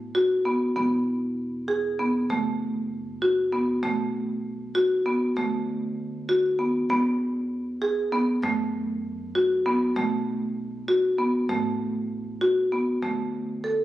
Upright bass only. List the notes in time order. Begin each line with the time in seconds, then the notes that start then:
Already playing: A1
0.76 E1
2.30 F#1
3.83 B1
5.36 D2
6.89 E2
8.42 F#2
9.96 B1
11.49 A1
13.02 D2